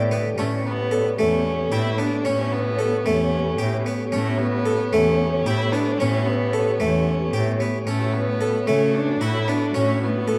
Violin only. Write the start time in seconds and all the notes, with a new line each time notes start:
0.39 A3
0.66 B3
1.19 C#4
1.73 E4
1.99 D4
2.25 C#4
2.53 B3
3.06 C#4
4.13 A3
4.38 B3
4.93 C#4
5.47 E4
5.72 D4
5.98 C#4
6.26 B3
6.81 C#4
7.87 A3
8.14 B3
8.67 C#4
8.95 D4
9.22 E4
9.48 D4
9.75 C#4
10.02 B3